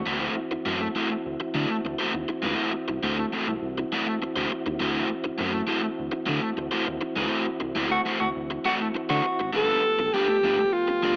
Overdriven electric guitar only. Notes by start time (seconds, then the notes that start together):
0.06 A3 E4 F#4 C5
0.51 muted overdriven electric guitar stroke
0.65 A3 E4 F#4 C5
0.80 muted overdriven electric guitar stroke
0.95 A3 E4 F#4 C5
1.10 muted overdriven electric guitar stroke
1.40 muted overdriven electric guitar stroke
1.54 A3 E4 F#4 D5
1.70 muted overdriven electric guitar stroke
1.85 muted overdriven electric guitar stroke
1.99 A3 E4 F#4 C5
2.14 muted overdriven electric guitar stroke
2.29 muted overdriven electric guitar stroke
2.42 G#3 D#4 F4 B4
2.54 A3 E4 F#4 C5
2.88 muted overdriven electric guitar stroke
3.03 A3 E4 F#4 C5
3.18 muted overdriven electric guitar stroke
3.33 A3 E4 F#4 C5
3.48 muted overdriven electric guitar stroke
3.78 muted overdriven electric guitar stroke
3.92 A3 E4 F#4 D5
4.08 muted overdriven electric guitar stroke
4.22 muted overdriven electric guitar stroke
4.36 A3 E4 F#4 C5
4.51 muted overdriven electric guitar stroke
4.66 muted overdriven electric guitar stroke
4.80 A3 E4 F#4 C5
5.24 muted overdriven electric guitar stroke
5.38 A3 E4 F#4 C5
5.53 muted overdriven electric guitar stroke
5.67 A3 E4 F#4 C5
5.83 muted overdriven electric guitar stroke
6.12 muted overdriven electric guitar stroke
6.26 A3 E4 F#4 D5
6.42 muted overdriven electric guitar stroke
6.57 muted overdriven electric guitar stroke
6.71 A3 E4 F#4 C5
6.87 muted overdriven electric guitar stroke
7.01 muted overdriven electric guitar stroke
7.16 G#3 D#4 F4 B4
7.28 A3 E4 F#4 C5
7.60 muted overdriven electric guitar stroke
7.75 A3 E4 F#4 C5
7.90 muted overdriven electric guitar stroke
8.06 A3 E4 F#4 C5
8.20 muted overdriven electric guitar stroke
8.50 muted overdriven electric guitar stroke
8.65 A3 E4 F#4 D5
8.81 muted overdriven electric guitar stroke
8.95 muted overdriven electric guitar stroke
9.09 A3 E4 F#4 C5
9.24 muted overdriven electric guitar stroke
9.40 muted overdriven electric guitar stroke
9.53 A3 D4 F4 B4
9.99 muted overdriven electric guitar stroke
10.14 A3 D4 F4 B4
10.28 muted overdriven electric guitar stroke
10.44 A3 D4 F4 B4
10.59 muted overdriven electric guitar stroke
10.88 muted overdriven electric guitar stroke
11.03 A3 D4 F4 D5